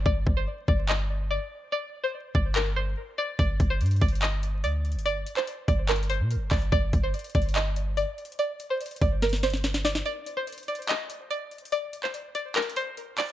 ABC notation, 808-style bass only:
X:1
M:4/4
L:1/16
Q:1/4=144
K:Gm
V:1 name="808-style bass" clef=bass
G,,,2 G,,,2 z2 G,,,6- G,,, z3 | z6 G,,,6 z4 | G,,,2 G,,,2 G,,2 G,,,6 D,,3 G,,,- | G,,,2 z4 G,,,4- G,,, B,,3/2 G,,,3/2 G,,,2 |
G,,,2 G,,,2 z2 G,,,6- G,,, z3 | z6 G,,,8- G,,,2 | z16 | z16 |]